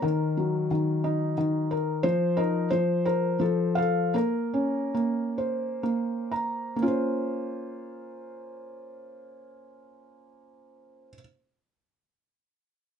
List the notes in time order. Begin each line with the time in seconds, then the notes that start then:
0.02 D#3 A#4
0.37 F#3
0.71 D#3
1.04 D#4
1.38 D#3
1.71 A#4
2.03 F3 C5
2.37 D#4 A#4
2.70 F3 C5
3.06 A#4 C5
3.40 F3 A4
3.75 A4 F5
4.14 A#3 A#4
4.54 C#4
4.95 A#3
5.38 C5
5.83 A#3
6.31 A#5
6.76 A#3
6.82 C#4 F4
6.88 C5